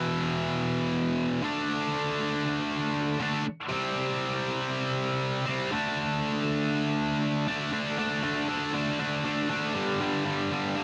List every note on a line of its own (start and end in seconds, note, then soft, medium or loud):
0.00 1.41 E2 medium
0.00 1.41 B2 medium
0.00 1.42 E3 medium
1.42 3.17 D3 medium
1.42 3.18 A3 medium
1.42 3.18 D4 loud
3.20 3.43 D3 medium
3.20 3.44 A3 medium
3.20 3.44 D4 medium
3.69 5.44 C3 medium
3.69 5.45 G3 medium
3.69 5.45 C4 medium
5.46 5.71 C3 medium
5.46 5.70 G3 medium
5.46 5.70 C4 medium
5.71 7.46 D3 medium
5.71 7.47 A3 medium
5.71 7.47 D4 medium
7.48 7.71 D3 medium
7.48 7.71 A3 medium
7.48 7.71 D4 medium
7.72 7.97 D3 loud
7.72 7.98 A3 medium
7.72 7.99 D4 loud
7.98 8.22 D3 medium
7.98 8.22 A3 medium
7.98 8.23 D4 loud
8.23 8.47 D3 loud
8.23 8.47 A3 loud
8.23 8.49 D4 medium
8.48 8.72 D3 medium
8.48 8.73 A3 medium
8.48 8.74 D4 medium
8.73 8.97 D3 medium
8.73 8.98 A3 loud
8.73 8.99 D4 loud
8.99 9.23 D3 loud
8.99 9.24 A3 loud
8.99 9.25 D4 loud
9.24 9.48 D3 loud
9.24 9.49 A3 loud
9.24 9.50 D4 loud
9.49 9.73 D3 medium
9.49 9.73 A3 medium
9.49 10.84 D4 medium
9.74 9.99 G2 loud
9.74 10.00 D3 loud
9.74 10.00 G3 loud
10.00 10.24 G2 medium
10.00 10.25 D3 medium
10.00 10.25 G3 loud
10.25 10.50 G2 loud
10.25 10.51 D3 loud
10.25 10.51 G3 loud
10.51 10.74 G2 medium
10.51 10.75 D3 medium
10.51 10.75 G3 medium
10.75 10.84 G2 loud
10.75 10.84 D3 loud
10.75 10.84 G3 loud